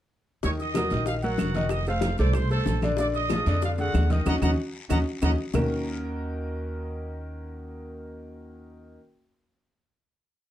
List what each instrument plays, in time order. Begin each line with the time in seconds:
0.42 upright bass D#2, grand piano D#3 D#4 D#5, trumpet section C#5 C#6, high bongo, high conga, long guiro, maracas
0.59 trumpet section D#5 D#6, high bongo, high conga, maracas
0.75 grand piano F#3 F#4 A#4, high bongo, high conga, short guiro, claves, maracas
0.90 upright bass A#1, grand piano D#3 D#4 D#5, high bongo, high conga, short guiro, maracas
1.06 trumpet section F5, high bongo, high conga, long guiro, maracas
1.22 grand piano F#3 F#4 A#4, trumpet section F#4 F#5, high conga, maracas
1.38 upright bass F1, high bongo, low bongo, high conga, short guiro, claves, maracas
1.54 grand piano D#3 D#4 D#5, high bongo, high conga, short guiro, maracas
1.69 trumpet section D#5 D#6, high bongo, high conga, long guiro, claves, maracas
1.85 grand piano A3 A4 C5, trumpet section F5, high bongo, high conga, maracas
2.01 high bongo, high conga, short guiro, maracas
2.17 upright bass C2, grand piano A3 A4 C5, trumpet section D5 D6, high bongo, high conga, short guiro, maracas
2.34 trumpet section C5 C6, high bongo, high conga, low conga, long guiro, claves, maracas
2.50 grand piano A3 A4 C5, trumpet section A4 A5, high conga, maracas
2.66 upright bass A#1, high bongo, low bongo, high conga, short guiro, maracas
2.81 grand piano D3 D4 D5, high bongo, high conga, short guiro, claves, maracas
2.97 grand piano D3 D4 D5, trumpet section D5 D6, high bongo, high conga, long guiro, maracas
3.14 trumpet section D#5 D#6, high bongo, high conga, maracas
3.30 grand piano F3 F4 G#4, high bongo, high conga, short guiro, claves, maracas
3.46 upright bass F2, grand piano D3 D4 D5, high bongo, high conga, short guiro, maracas
3.62 trumpet section F5, high bongo, high conga, long guiro, maracas
3.78 grand piano D3 D4 G#4, trumpet section F#4 F#5, high conga, maracas
3.93 upright bass D#2, high bongo, low bongo, high conga, short guiro, claves, maracas
4.10 grand piano D#3 D#4 D#5, trumpet section D#5 D#6, high bongo, high conga, short guiro, maracas
4.26 upright bass D#2, grand piano C#4 D#4 F#4, trumpet section D#5 F#5 A#5, low bongo, high conga, long guiro, claves, maracas
4.42 upright bass D#2, grand piano C#4 D#4 F#4, trumpet section D#5 F#5 A#5, low bongo, high conga, long guiro, claves, maracas
4.89 upright bass D#2, grand piano C#4 D#4 F#4, trumpet section D#5 F#5 A#5, low bongo, high conga, claves, maracas
5.22 upright bass D#2, grand piano C#4 D#4 F#4, trumpet section D#5 F#5 A#5, low bongo, high conga, long guiro, claves, maracas
5.54 upright bass D#2, grand piano D#3 A#3 C#4 D#4 F#4 A#4, low bongo, low conga, claves, maracas